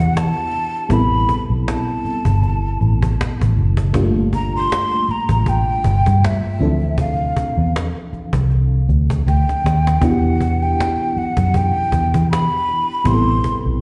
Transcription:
Already playing: B3 D4 E4 F#4 G4 F#5
0.00 E3
0.17 A5, cajon slap
0.52 cajon slap
0.89 A1 G3 B3 C4 E4 A4, cajon bass
0.93 B5
1.29 cajon bass
1.50 B1
1.68 A5, cajon slap
2.05 muted fingered electric bass stroke, cajon slap
2.25 G1, cajon bass
2.43 cajon slap
2.81 A1, cajon slap
3.02 cajon bass
3.21 cajon slap
3.41 A1, cajon bass
3.57 F#1, cajon slap
3.77 cajon bass
3.93 G1 G3 A#3 D4 F4 G4, cajon bass
4.03 A3
4.33 A#5, cajon bass
4.56 C6
4.72 cajon slap
5.09 A#5, muted fingered electric bass stroke, cajon slap
5.29 A1, cajon bass
5.46 G5, cajon bass
5.84 G1, cajon bass
6.06 G2, cajon bass
6.25 E5, cajon slap
6.59 D2 E3 F3 C4 D4 A4, cajon slap
6.98 F5, cajon bass
7.37 cajon bass
7.58 E2
7.76 cajon slap
8.13 muted fingered electric bass stroke, cajon slap
8.33 C2, cajon bass
8.50 cajon slap
8.89 D2, cajon slap
9.10 cajon bass
9.26 D2 G5, cajon slap
9.49 cajon slap
9.64 D#2, cajon slap
9.87 cajon slap
10.01 E2 E3 B3 D4 E4 F#4 F#5, cajon bass
10.11 G4
10.41 cajon bass
10.62 G5
10.80 cajon slap
11.16 F#5, muted fingered electric bass stroke
11.37 F#2, cajon bass
11.54 G5, cajon bass
11.92 E2, cajon bass
12.14 E3, cajon bass
12.31 B5, cajon slap
12.68 cajon slap
13.04 A1 G3 B3 C4 E4 G4 C6, cajon bass
13.14 A4
13.44 cajon bass
13.66 B1

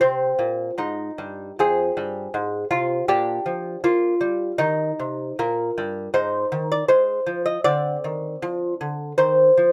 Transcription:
0.01 C3 C4
0.39 A#2
0.78 G#2 D#4
1.18 G2
1.59 F2 C4 G#4
1.97 G2
2.34 G#2
2.71 C3 F4
3.08 A#2 D4 G4
3.46 F3
3.84 A#3 F4
4.21 G3
4.58 D#3 D#4
5.00 C3
5.39 A#2 A#4
5.78 G2
6.14 G#2 D#4 C5
6.52 D#3
6.72 D5
6.88 G#3 C5
7.26 F3
7.46 D#5
7.64 D3 C4 D5
8.04 D#3
8.42 F3
8.81 D3
9.18 D#3 C4 C5
9.58 F3

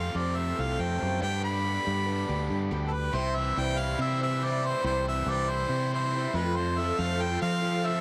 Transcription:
Already playing: F2 C3 F3 A3 C4 F4 G4 A4 C5 F5 A5
0.15 F2 F3 G3 C4 G4 A4 D5
0.36 C4 G4 A4 E5
0.57 C2 G3 C4 G4 A4
0.61 F5
0.78 F2 C4 G4 A4 G5
0.98 F3 G3 C4 G4 A4
1.02 F#2
1.19 G2 D3 G3 B3 D4 G4 B4 D5 G5 B5
1.24 D4 G4
1.44 B5
1.64 D4 G4 B4
1.85 G2 G3 D4 G4 B4
2.06 D4 G4 B4
2.29 D2 G3 D4 G4 B4
2.50 G2 D4 G4 B4
2.71 D2 G3 D4 G4 B4
2.88 A4
2.93 B4
3.12 C2 C3 E3 G3 C4 E4 G4 C5 E5 C6
3.35 E3 C4 E4 C5 E5
3.56 C2 G3 C4 E4 C5 G5
3.77 C4 E4 C5 F5
3.81 G3
3.99 C3 C4 E5
4.20 E3 G3 C4 E4 C5 E5
4.41 G3 C4 E4 C5 D5
4.63 E3 C5
4.82 C2 C3 E3 G3 C4 E4 C5
4.86 C5
5.05 E3 C4 E4 C5 E5
5.26 C2 G3 C4 E4 C5
5.31 D5
5.48 G3 C4 E4 C5
5.69 C3 C4
5.93 E3 G3 C4 E4 C5
6.12 G3 C4 E4 C5
6.33 F2 A3 C4 F4 A4 B4 A5
6.37 F3
6.56 F2 C5
6.78 F3 C4 F4 A4 E5
6.98 F2 A3 C4 F4 A4 F5
7.19 C4 F4 A4 G5
7.42 F3 C4 F5
7.61 F3 C4 F4 A4
7.84 A3 C4 F4 A4 E5

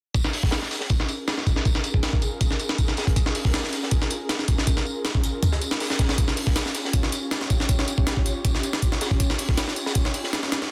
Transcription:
0.14 C#4 F4 G#4 A#4, kick, closed hi-hat, tambourine
0.24 snare
0.33 closed hi-hat, open hi-hat
0.43 kick, snare
0.51 snare, closed hi-hat, tambourine
0.62 snare
0.71 snare, closed hi-hat, tambourine
0.80 snare
0.90 kick, closed hi-hat, tambourine
1.00 snare
1.09 closed hi-hat, tambourine
1.28 snare, closed hi-hat, tambourine
1.38 snare
1.47 kick, closed hi-hat, tambourine
1.56 snare
1.65 kick, closed hi-hat, tambourine
1.75 snare
1.84 closed hi-hat, tambourine
1.94 kick
2.03 snare, closed hi-hat, tambourine
2.13 kick
2.22 closed hi-hat, tambourine
2.41 kick, closed hi-hat, tambourine
2.51 snare
2.60 closed hi-hat, tambourine
2.69 snare
2.78 kick, closed hi-hat, tambourine
2.88 snare
2.97 snare, closed hi-hat, tambourine
3.07 kick, closed hi-hat
3.16 kick, closed hi-hat, tambourine
3.26 snare
3.35 closed hi-hat, open hi-hat
3.45 kick, snare
3.54 snare, closed hi-hat, tambourine
3.64 snare
3.73 snare, closed hi-hat, tambourine
3.83 snare
3.91 kick, closed hi-hat, tambourine
4.02 snare
4.10 closed hi-hat, tambourine
4.29 snare, closed hi-hat, tambourine
4.39 snare
4.48 kick, closed hi-hat, tambourine
4.58 snare
4.67 kick, closed hi-hat, tambourine
4.77 snare
4.86 tambourine
5.05 snare, closed hi-hat, tambourine
5.15 kick
5.24 closed hi-hat, tambourine
5.43 kick, closed hi-hat, tambourine
5.52 snare
5.62 closed hi-hat, tambourine
5.71 snare
5.80 snare, open hi-hat, tambourine
5.90 snare, tambourine
5.99 kick, snare, closed hi-hat, tambourine
6.09 snare, tambourine
6.18 G4 C#5, kick, closed hi-hat, tambourine
6.28 snare
6.37 closed hi-hat, open hi-hat
6.47 kick, snare
6.56 snare, closed hi-hat, tambourine
6.66 snare
6.74 snare, closed hi-hat, tambourine
6.85 snare
6.93 kick, closed hi-hat, tambourine
7.03 snare
7.12 closed hi-hat, tambourine
7.31 snare, closed hi-hat, tambourine
7.41 snare
7.50 kick, closed hi-hat, tambourine
7.60 snare
7.69 kick, closed hi-hat, tambourine
7.79 snare
7.88 closed hi-hat, tambourine
7.98 kick
8.07 snare, closed hi-hat, tambourine
8.17 kick
8.26 closed hi-hat, tambourine
8.45 kick, closed hi-hat, tambourine
8.55 snare
8.63 closed hi-hat, tambourine
8.73 snare
8.82 kick, closed hi-hat, tambourine
8.92 snare
9.01 snare, closed hi-hat, tambourine
9.11 kick, closed hi-hat
9.20 kick, closed hi-hat, tambourine
9.30 snare
9.38 closed hi-hat, open hi-hat
9.49 kick, snare
9.57 snare, closed hi-hat, tambourine
9.68 snare
9.76 closed hi-hat, tambourine
9.86 snare, tambourine
9.95 kick, closed hi-hat, tambourine
10.05 snare
10.14 closed hi-hat, open hi-hat
10.24 snare
10.33 snare, closed hi-hat, tambourine
10.43 snare
10.52 snare, closed hi-hat, tambourine
10.61 snare

